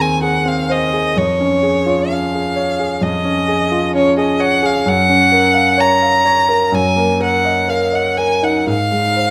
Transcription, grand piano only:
Already playing: D#2 G#4
0.00 C4
0.22 G#4
0.45 C4
0.69 C5
0.93 G#4
1.17 F2
1.40 C#4
1.63 G#4
1.86 F4
2.10 C#4
2.34 G#4
2.56 C#5
2.79 G#4
3.01 F2
3.24 C#4
3.48 G#4
3.71 F4
3.95 C#4
4.17 G#4
4.40 C#5
4.63 G#4
4.86 F#2
5.09 C#4
5.32 A#4
5.54 F5
5.78 C#5
6.02 F5
6.25 C#5
6.49 A#4
6.72 F#2
6.96 A#3
7.20 A#4
7.45 D#5
7.68 A#4
7.92 D#5
8.17 A#4
8.43 D#4
8.67 G#2
8.91 G#3
9.17 C5

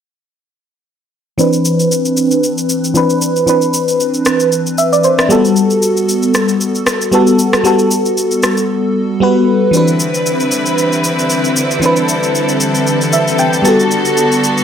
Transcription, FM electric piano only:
1.38 E3 C4 D4 B4
2.94 E3 C4 D4 B4
3.46 E3 C4 D4 B4
4.78 E5
4.93 D5
5.04 C5
5.19 B4
5.29 G3 B3 F#4 A4
7.12 G3 B3 F#4 A4
7.64 G3 B3 F#4 A4
9.20 G3 B3 F#4 B4
9.71 E3 C4 D4
9.77 B4
11.80 E3 C4 D4
11.86 B4
13.13 E5
13.39 G5
13.62 G3 B3 A5
13.66 F#4 A4

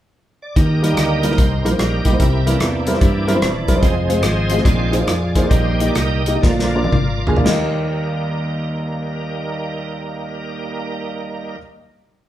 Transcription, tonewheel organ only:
0.42 D5
0.55 G4 A#4 D#5
0.82 G3 A#3 D#4
0.96 G4 A#4 D#5
1.36 D#4 G4 C5
1.77 G3 A#3 D#4 G4 A#4
2.18 E4 G4 A#4
2.46 E3 A#3 D4
2.58 A#3 E4 G4
3.67 D5
3.76 D5 D#5
3.81 F3 G#3 C4 G#4 C5
4.21 G#4 C5 D#5
4.63 D#3 G#3 C4 F4 G#4 D5
5.05 F4 G#4 D5
5.49 D#3 G3 A#3 D#4 G4 C5
5.87 D5
5.94 G4 A#4 D#5
6.41 D3 F3 A#3 F4 A#4 D5
7.44 G3 A#3 D#4 A#4

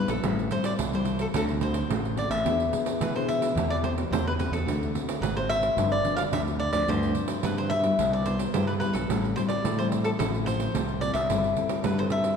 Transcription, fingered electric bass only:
0.08 A#1
0.24 A1
0.79 C2
1.34 D2
1.90 A1
2.30 A1
2.45 E2
3.01 E3
3.55 E2
4.11 E2
4.51 E2
4.66 D2
5.21 G#1
5.77 G1
6.32 D2
6.73 D2
6.88 D2
7.44 G2
7.99 C2
8.54 G2
8.95 B1
9.09 A1
9.64 A2
10.20 A1
10.75 C2
11.14 C2
11.30 G1
11.85 G2

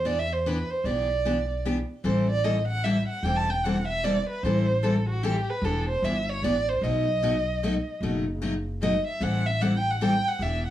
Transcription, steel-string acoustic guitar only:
0.05 E3 B3 D4 G4
0.46 E3 B3 D4 G4
0.85 E3 B3 D4 G4
1.25 E3 B3 D4 G4
1.65 E3 B3 D4 G4
2.04 E3 G3 C4 E4 A4
2.44 E3 G3 C4 E4 A4
2.84 E3 G3 C4 E4 A4
3.24 E3 G3 C4 E4 A4
3.65 E3 G3 C4 E4 A4
4.03 E3 G3 C4 E4 A4
4.45 E3 G3 C4 E4 A4
4.83 E3 G3 C4 E4 A4
5.23 E3 G3 C4 E4 A4
5.64 E3 B3 D4 G4
6.04 E3 B3 D4 G4
6.44 E3 B3 D4 G4
6.83 B2 F#3 A3 D#4 F#4
7.23 B2 F#3 A3 D#4 F#4
7.63 B2 F#3 A3 D#4 F#4
8.03 B2 F#3 A3 D#4 F#4
8.42 B2 F#3 A3 D#4 F#4
8.82 B2 F#3 A3 D#4 F#4
9.21 E3 G3 C4 E4 A4
9.61 E3 G3 C4 E4 A4
10.01 E3 G3 C4 E4 A4
10.41 E3 B3 D4 G4

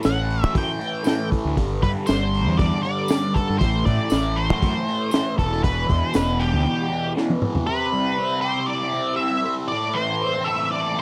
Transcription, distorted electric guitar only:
0.00 A2 E3 A3
0.53 A2 E3 A3
0.79 E3 A3
1.04 A2 E3 A3
1.31 E3 A3
1.55 G2 D3 G3
1.82 D3 G3
2.07 G2 D3 G3
2.58 G2 D3 G3
2.84 D3 G3
3.10 G2 D3 G3
3.35 D3 G3
3.60 A2 E3 A3
3.86 E3 A3
4.11 A2 E3 A3
4.61 A2 E3 A3
4.86 E3 A3
5.12 A2 E3 A3
5.36 E2 B2 E3
5.60 E2 B2 E3
5.87 B2 E3
6.13 E2 B2 E3
6.65 E2 B2 E3
6.89 B2 E3
7.15 E2 B2 E3
7.42 B2 E3
7.68 C3
7.93 G3
8.19 C4
8.45 G4
8.68 E4
8.94 C4
9.19 E4
9.45 C4
9.70 A2
9.95 E3
10.22 C4
10.46 A4
10.71 E4
10.96 C4

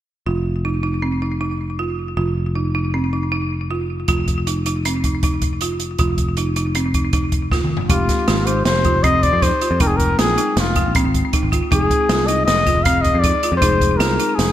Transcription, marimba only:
0.27 F4
0.65 D#4
0.83 D#4
1.02 C4
1.22 D#4
1.41 D#4
1.79 F4
2.17 F4
2.55 D#4
2.75 D#4
2.94 C4
3.13 D#4
3.32 D#4
3.71 F4
4.09 F4
4.47 D#4
4.66 D#4
4.86 C4
5.05 D#4
5.24 D#4
5.62 F4
5.99 F4
6.38 D#4
6.56 D#4
6.75 C4
6.95 D#4
7.13 D#4
7.52 F4
7.90 D#4
8.28 F4
8.47 D#4
8.85 F4
9.04 C4
9.42 D#4
9.62 F4
9.80 D#4
10.19 F4
10.38 D#4
10.76 F4
10.96 C4
11.33 D#4
11.52 F4
11.72 D#4
12.10 F4
12.28 D#4
12.67 F4
12.86 C4
13.25 D#4
13.43 F4
13.62 D#4
14.00 F4
14.20 D#4

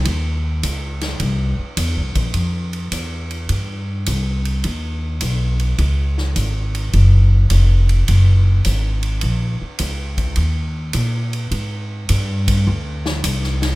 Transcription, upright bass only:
0.06 D#2
0.63 C#2
1.20 C2
1.59 muted upright bass stroke
1.77 E2
1.97 C2
2.16 A#1
2.34 F2
2.91 E2
3.49 G2
4.08 C2
4.65 D#2
5.22 B1
5.79 C#2
6.36 G#1
6.94 F#1
7.51 F1
8.09 F#1
8.66 G#1
9.23 A#1
9.61 muted upright bass stroke
9.80 C#2
10.37 D#2
10.94 A#2
11.51 G#2
12.10 G2
12.67 D2
13.24 C2

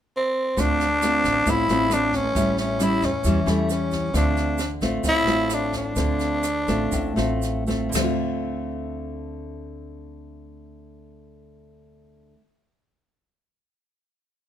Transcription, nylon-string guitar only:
0.57 D3 A3 C4 F4
1.03 A3 C4 F4
1.46 A2 A3 C4 F4
1.70 A3 C4 F4
1.92 A3 C4 F4
2.36 A2 G3 C#4 E4
2.80 G3 C#4 E4
3.25 E3 G3 C#4 E4
3.46 G3 C#4 E4
4.14 D3 A3 C4 F4
4.82 A3 C4 F4
5.05 A2
5.27 A3 C4 F4
5.96 D3 A3 C4 F4
6.68 A3 C4 F4
6.93 A2
7.16 A3 C4 F4
7.67 A3 C4 F4
7.89 D3
7.95 A3
7.99 C4
8.04 F4

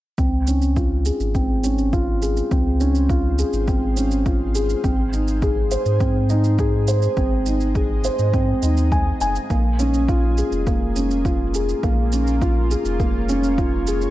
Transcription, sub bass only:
0.18 C#2
1.20 G#1
2.51 C#2
3.53 G#1
4.84 G#1
5.86 G#2
7.17 G#1
8.19 G#2
8.63 D#2
9.21 F#1
9.50 A#1
10.52 F1
11.83 A#1
12.85 F1

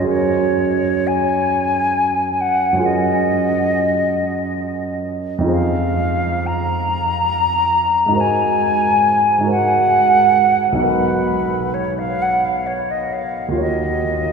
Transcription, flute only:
0.08 C#5
1.07 G#5
2.40 F#5
2.85 D#5
5.51 F5
6.46 A#5
8.20 G#5
9.50 F#5
10.84 B4
11.74 C#5
11.98 F5
12.22 F#5
12.44 F5
12.66 C#5
12.90 D#5
13.13 F5
13.60 D#5

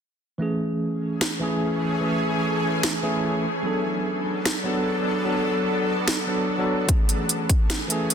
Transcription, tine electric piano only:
0.38 E3 A3 C#4
0.42 G#4
1.39 E3 A3 C#4 G#4
2.00 E3 A3 C#4 G#4
3.02 E3 A3 C#4 G#4
3.62 F#3 B3 D4 A4
4.64 F#3 B3 D4 A4
5.25 F#3 B3 D4
5.29 A4
6.27 F#3 B3 D4 A4
6.58 F#3 B3 D4 A4
6.87 E3 A3
6.91 G#4
7.88 E3 A3 C#4 G#4

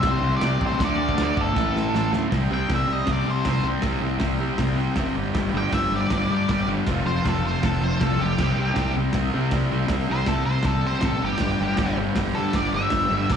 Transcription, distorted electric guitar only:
0.02 C3 G3 C4
0.79 D3 A3 D4
1.54 A2 E3 A3
2.30 C3 G3 C4
2.50 C3 G3 C4
2.68 C3 G3 C4
2.88 C3 G3 C4
3.06 C3 G3 C4
3.25 C3 G3 C4
3.46 C3 G3 C4
3.64 C3 G3 C4
3.83 C3 G3 C4
4.02 C3 G3 C4
4.20 C3 G3 C4
4.39 C3 G3 C4
4.59 C3 G3 C4
4.77 C3 G3 C4
4.97 C3 G3 C4
5.15 G2 D3 G3
5.35 G2 D3 G3
5.52 G2 D3 G3
5.71 G2 D3 G3
5.91 G2 D3 G3
6.08 G2 D3 G3
6.29 G2 D3 G3
6.48 G2 D3 G3
6.67 G2 D3 G3
6.86 F2 C3 F3
7.06 F2 C3 F3
7.25 F2 C3 F3
7.43 F2 C3 F3
7.61 F2 C3 F3
7.81 F2 C3 F3
8.01 F2 C3 F3
8.20 F2 C3 F3
8.41 C3 G3 C4
8.60 C3 G3 C4
8.77 C3 G3 C4
8.97 C3 G3 C4
9.15 C3 G3 C4
9.33 C3 G3 C4
9.53 C3 G3 C4
9.71 C3 G3 C4
9.91 C3 G3 C4
10.09 C3 G3 C4
10.28 C3 G3 C4
10.45 C3 G3 C4
10.66 C3 G3 C4
10.84 C3 G3 C4
11.03 C3 G3 C4
11.21 G2 D3 G3
11.40 G2 D3 G3
11.60 G2 D3 G3
11.80 G2 D3 G3
11.98 G2 D3 G3
12.16 G2 D3 G3
12.36 G2 D3 G3
12.54 G2 D3 G3
12.73 G2 D3 G3
12.91 G2 D3 G3
13.10 G2 D3 G3
13.30 G2 D3 G3

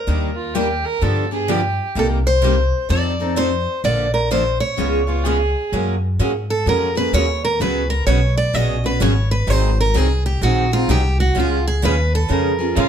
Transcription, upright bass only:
0.07 D#2
1.02 G2
1.95 C2
2.90 F2
3.84 A#1
4.78 C#2
5.72 F#2
6.19 G#2
6.66 F2
7.13 D#2
7.60 C#2
8.07 B1
8.54 A#1
9.01 G#1
9.47 G#1
9.95 C2
10.41 A#1
10.88 C2
11.36 C#2
11.83 D#2
12.30 F2
12.77 G#2

